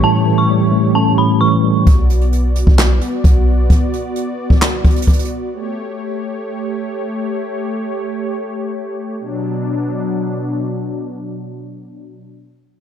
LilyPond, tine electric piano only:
\new Staff \with { instrumentName = "Tine electric piano" } { \clef bass \time 4/4 \key b \minor \tempo 4 = 131 <a, e g cis'>8 e8 g8 a8 cis'8 a,8 e8 g8 | r1 | r1 | r1 |
r1 | r1 | r1 | }